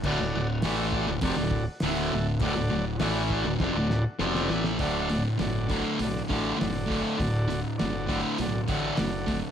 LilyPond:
<<
  \new Staff \with { instrumentName = "Transistor combo organ" } { \time 4/4 \key d \major \tempo 4 = 101 <fis' a' d''>8 r8 <fis' a' d''>8 <fis' a' d''>8 <fis' a' d''>8 r8 <fis' a' e''>8 r8 | <fis' a' d''>8 r8 <fis' a' d''>8 <fis' a' d''>8 <fis' a' d''>8 r8 <fis' a' d''>8 r8 | <fis' a' d''>8 r8 <fis' a' d''>8 r8 <fis' a' d''>8 <fis' a' d''>8 <fis' a' d''>8 r8 | <fis' a' d''>8 r8 <fis' a' d''>8 r8 <fis' a' d''>8 <fis' a' d''>8 <fis' a' d''>8 r8 | }
  \new Staff \with { instrumentName = "Distorted electric guitar" } { \clef bass \time 4/4 \key d \major <d, a,>16 <d, a,>16 <d, a,>8 <a, e a>8. <d, a,>16 <f, c>16 <d, a,>8 r16 <d, a, d>8 <d, a,>8 | <d, a,>16 <d, a,>16 <d, a,>8 <a, e a>8. <d, a,>16 <f, c>16 <d, a,>8 r16 <f, c f>8 <a, e a>8 | <d, a, d>8 <d, a,>8 <d, a,>8 <d, a, d>8 <d, a,>8 <d, a, d>8 <d, a,>8 <d, a, d>8 | <d, a,>8 <d, a,>8 <d, a,>8 <d, a, d>8 <d, a,>8 <d, a, d>8 <d, a,>8 <d, a,>8 | }
  \new Staff \with { instrumentName = "Fingered electric bass" } { \clef bass \time 4/4 \key d \major d,,16 d,,16 d,,8 a,,8. d,,16 f,,16 d,,8 r16 d,,8 d,,8 | d,,16 d,,16 d,,8 a,,8. d,,16 f,,16 d,,8 r16 f,,8 a,,8 | d,,4 g,,4 b,,8 a,,8 fis,,4 | d,,4 g,,4 b,,8 a,,8 fis,,4 | }
  \new DrumStaff \with { instrumentName = "Drums" } \drummode { \time 4/4 <cymc bd>4 <hho sn>8 bd8 <hho bd>16 sn16 bd8 <hho sn>4 | <hho bd>4 <hho sn>8 bd8 <bd sn>8 sn8 sn16 sn16 sn16 sn16 | <hho bd>8 hho8 <hho sn>8 <hho bd>8 hho16 sn16 <hho bd>8 <hho sn>8 <hho bd>8 | <hho bd>8 hho8 <hho sn>8 <hho bd>8 hho8 <hho bd>8 <hho sn>8 <hho bd>8 | }
>>